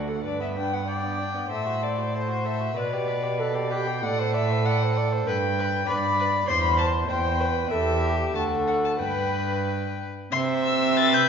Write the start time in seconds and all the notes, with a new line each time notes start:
Already playing: D2 F#4
0.08 A4 F#5
0.24 G2 D4 B4 D5
0.40 B3 E5
0.56 D4 G5
0.72 B3 F#5
0.88 D4 D5 G5
1.03 B3
1.19 D4
1.34 B3
1.50 A2 A4 C5 E5
1.66 F#4
1.82 A4 D5
1.97 F#4
2.13 A4 C5
2.29 F#4
2.44 A4 E5
2.60 F#4
2.76 B2 B4 D5
2.93 G4
3.08 B4
3.23 G4
3.39 A4 B4
3.54 G4
3.71 G4 B4 G5
3.87 G4
4.03 A2 A4 D5 F#5
4.19 C5
4.34 D5 E5
4.51 C5
4.66 D5 F#5
4.82 C5
4.97 D5
5.12 C5
5.27 G2 B4 G5
5.59 B4
5.87 G2 B4 D5 B5
6.19 B4
6.48 E2 C5 C6
6.63 B5
6.78 C5 A5
7.09 E2 C5 G5
7.40 B4 C5
7.71 E2 G4 A4 E5
8.03 G4
8.34 D2 F#4 A4 A5
8.67 F#5
8.85 A5
8.99 G2 B4 G5
10.32 C3 C5 E5 C6
10.65 E6
10.97 B4 A6
11.14 G6